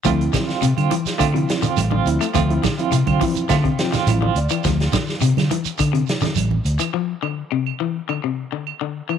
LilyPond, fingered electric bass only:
\new Staff \with { instrumentName = "Fingered electric bass" } { \clef bass \time 4/4 \key d \minor \tempo 4 = 105 d,8 r8 c16 d16 r8 d8 r8 a,,8 d,16 r16 | d,8 r8 c16 d16 r8 d8 r8 a,,8 d,16 r16 | d,8 r8 c16 d16 r8 d8 r8 a,,8 d,16 r16 | r1 | }